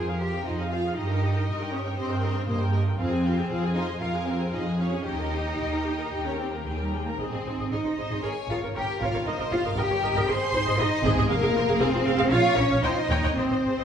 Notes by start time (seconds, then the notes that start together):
Already playing: F2 G#4 A#4
0.07 G#4 F5
0.20 F4 G4 C5 G5
0.33 G#4 F5
0.45 F2 D#4 F4 G#4 C5 D#5
0.58 G#4 F5
0.71 F4 C5 F5
0.84 G#4 F5
0.96 G2 D#4 G4 D#5
1.10 A#4 G5
1.22 G4 D#5
1.35 A#4 G5
1.46 G2 G4 A#4 D#5
1.60 A#4 G5
1.72 C#4 G4 C#5 D#5
1.84 A#4 G5
1.96 G2 C4 G4 C5 D#5
2.10 A#4 G5
2.22 G4 A#4 D#5
2.35 A#4 G5
2.46 G2 A#3 G4 A#4 C5 D#5
2.61 A#4 G5
2.73 G4 A#4 D#5
2.87 A#4 G5
2.97 F2 C4 F4 G#4 C5 F5
3.11 G#4 G#5
3.24 F4 G4 F5
3.37 G#4 G#5
3.48 F2 F4 G#4 F5
3.63 G#4 G#5
3.74 D#4 F4 C5 D#5 F5
3.88 G#4 G#5
4.00 F2 F4 A#4 F5
4.14 G#4 G#5
4.26 C4 F4 C5 F5
4.39 G#4 G#5
4.52 F2 D#4 F4 G#4 D#5 F5
4.66 G#4 G#5
4.78 C#4 F4 C#5 F5
4.91 G#4 G#5
5.06 D#2 D#4 G4 D#5 G5
5.18 A#4 A#5
5.32 G4 G5
5.45 A#4 A#5
5.58 D#2 G4 G5
5.72 A#4 A#5
5.85 G4 G5
5.99 A#4 A#5
6.12 D#2 G4 G5
6.26 C#4 A#4 C#5 A#5
6.38 C4 G4 C5 G5
6.52 A#3 A#4 A#5
6.65 D#2 G#3 G4 G#4 G5
6.79 G3 G4 A#4 A#5
6.92 G#3 G4 G#4 G5
7.06 A#3 A#4 A#5
7.18 G#1 C4 G#4 C5 D#5
7.33 G#1 G#4 D#5
7.46 G#1 D#4 C5
7.59 G#1 G#4 D#5
7.71 G#1 D#4 G#4 A#4 D#5
7.85 G#1 D#4 C5
7.98 G#1 G#4 C5 D#5
8.11 G#1 G#4 D#5
8.22 G#1 G#4 A#4 C#5 G#5
8.49 G#1 F4 G#4 A#4 F5
8.62 G#1 A#4 C#5
8.75 G#1 G4 A#4 C#5 G5
9.01 G#1 F4 A#4 C#5 F5
9.14 G#1 A#4 C#5
9.26 G1 D#4 A#4 C5 D#5
9.39 G1 A#4 D#5
9.52 G1 F4 G4 C#5 F5
9.64 G1 A#4 D#5
9.77 G1 G4 A#4 D#5 G5
9.89 G1 G4 C#5
10.02 G1 A#4 D#5
10.15 G1 A#4 D#5
10.27 G#1 G#4 C5 D#5 C6
10.53 G#1 D#4 C5
10.66 G#1 G#4 D#5
10.78 G#1 D#4 G#4 C5 D#5
11.04 G#1 G#3 G#4 D#5
11.17 G#1 G#4 D#5
11.28 F1 A#3 G#4 A#4 F5
11.42 F1 G#4 F5
11.55 F1 F4 C5
11.67 F1 G#4 F5
11.80 F1 C4 G#4 C5 F5
11.92 F1 F4 C5
12.05 F1 G#4 C5 F5
12.17 F1 G#4 F5
12.30 A#1 F4 C#5 F5
12.55 A#1 C#4 A#4 C#5
12.69 A#1 C#5 F5
12.82 D#2 D#4 C5 C#5 D#5 G5
12.89 F4
12.96 D#4
13.10 D#2 A#4 C#5 G5
13.23 D#2 C#5 G5
13.36 G#1 C4 C5 D#5
13.51 G#1 C5 D#5
13.65 G#1 G#4 C5
13.78 G#1 C5 D#5